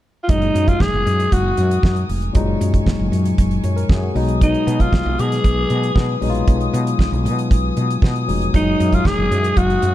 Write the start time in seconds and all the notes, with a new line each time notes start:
0.23 F4
0.28 F#1 A#2 F#3 G#3 D#4 A#4 G#5 D#6, kick, closed hi-hat
0.42 closed hi-hat
0.55 F#2, closed hi-hat
0.68 F4, kick, closed hi-hat
0.80 F#1 G#4, kick, snare
0.93 F#1
1.06 F#2, closed hi-hat
1.20 closed hi-hat
1.32 F#1 F#4, kick, closed hi-hat
1.57 F#2, closed hi-hat
1.71 closed hi-hat
1.83 F#2, kick, snare
1.96 closed hi-hat
2.09 F1, open hi-hat
2.22 closed hi-hat
2.33 F#1 A#2 F#3 G#3 D#4 C#6, kick, closed hi-hat
2.61 F#2, closed hi-hat
2.74 kick, closed hi-hat
2.86 F#1, kick, snare
2.99 F#1
3.12 F#2, closed hi-hat
3.25 closed hi-hat
3.38 F#1, kick, closed hi-hat
3.51 closed hi-hat
3.64 F#2 C#5, closed hi-hat
3.76 A#4, closed hi-hat
3.89 F#2 G#4, kick, snare
4.03 F#4
4.14 B1 B2 F#3 G#3 D#4 B4 D#6, open hi-hat
4.28 closed hi-hat
4.41 D#4, kick, closed hi-hat
4.54 closed hi-hat
4.67 B2, closed hi-hat
4.80 F4, kick, closed hi-hat
4.93 B1, kick, snare
5.06 B1
5.19 B2 G#4, closed hi-hat
5.32 snare, closed hi-hat
5.44 B1, kick, closed hi-hat
5.70 B2, closed hi-hat
5.83 closed hi-hat
5.95 B2, kick, snare
6.20 A#1 B2 F#3 G#3 D#4, open hi-hat
6.30 F4
6.35 closed hi-hat
6.48 B1, kick, closed hi-hat
6.61 closed hi-hat
6.73 B2, closed hi-hat
6.87 closed hi-hat
6.99 B1, kick, snare
7.12 B1, closed hi-hat
7.25 B2, closed hi-hat
7.39 closed hi-hat
7.51 B1, kick, closed hi-hat
7.77 B2, closed hi-hat
7.90 closed hi-hat
8.02 B2, kick, snare
8.16 closed hi-hat
8.27 F1 B2 F#3 G#3 D#4, open hi-hat
8.42 closed hi-hat
8.53 F#1 A2 F#3 G#3 D#4 A#4, kick, closed hi-hat
8.59 A#2
8.80 F#2, closed hi-hat
8.93 F4, kick, closed hi-hat
9.05 F#1 G#4, kick, snare
9.18 F#1
9.31 F#2, closed hi-hat
9.44 closed hi-hat
9.57 F#1 F#4, kick, closed hi-hat
9.70 closed hi-hat
9.82 F#2, closed hi-hat